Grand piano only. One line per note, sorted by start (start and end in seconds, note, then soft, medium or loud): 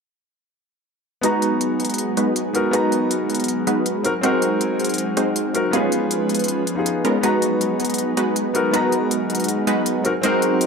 1.21 2.52 B3 medium
1.21 2.52 D#4 medium
1.21 2.53 F#4 medium
1.21 2.54 A#5 medium
2.53 2.60 B3 medium
2.53 2.60 D#4 medium
2.53 2.61 F#4 medium
2.53 2.61 A#4 medium
2.71 4.01 B3 medium
2.71 4.02 D#4 medium
2.71 4.03 F#4 medium
2.75 4.03 A#5 medium
4.04 4.10 C4 medium
4.04 4.10 D#4 medium
4.04 4.11 F#4 medium
4.04 4.11 A#4 medium
4.21 5.52 C4 medium
4.21 5.52 D#4 medium
4.21 5.53 F#4 medium
4.21 5.54 A#4 medium
5.53 5.60 C4 medium
5.53 5.60 D#4 medium
5.53 5.61 F#4 medium
5.53 5.61 A#4 medium
5.71 6.73 B3 medium
5.71 6.75 D#4 medium
5.71 6.75 F4 medium
5.75 6.76 G#4 medium
6.75 7.20 B3 medium
6.75 7.21 D#4 medium
6.75 7.22 F4 medium
6.79 7.22 G#4 medium
7.21 8.52 B3 medium
7.21 8.52 D#4 medium
7.21 8.53 F#4 medium
7.25 8.54 A#5 medium
8.54 8.60 B3 medium
8.54 8.60 D#4 medium
8.54 8.61 F#4 medium
8.54 8.61 A#4 medium
8.71 10.02 B3 medium
8.71 10.02 D#4 medium
8.71 10.03 F#4 medium
8.76 10.04 A#5 medium
10.04 10.10 C4 medium
10.04 10.11 D#4 medium
10.04 10.11 F#4 medium
10.04 10.11 A#4 medium
10.22 10.66 C4 medium
10.22 10.66 D#4 medium
10.22 10.66 F#4 medium
10.22 10.66 A#4 medium